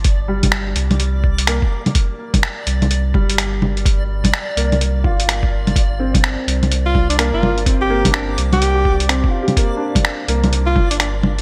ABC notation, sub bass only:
X:1
M:4/4
L:1/16
Q:"Swing 16ths" 1/4=126
K:Gm
V:1 name="Sub bass" clef=bass
G,,,6 C,,6- C,, z3 | z6 C,,4 G,,,6- | G,,,4 z2 C,,4 G,,,4 G,,,2 | G,,,4- G,,, z C,,6- C,, G,,,3- |
G,,,6 C,,6- C,, z3 | z6 C,,4 G,,,6 |]